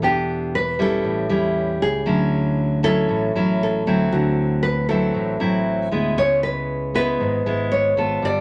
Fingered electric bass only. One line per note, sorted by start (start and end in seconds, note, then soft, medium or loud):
0.02 1.00 E1 medium
1.04 1.28 A1 medium
1.30 1.78 E2 medium
1.81 2.05 C#2 medium
2.07 3.05 D2 loud
3.09 3.33 A1 medium
3.35 3.83 A1 medium
3.86 4.10 D2 medium
4.12 5.10 D2 loud
5.15 5.39 A1 medium
5.40 5.88 A1 medium
5.92 6.15 D2 medium
6.16 7.15 C#2 medium
7.19 7.43 G#1 medium
7.45 7.93 G#1 medium
7.97 8.20 G#1 medium
8.22 8.41 G1 medium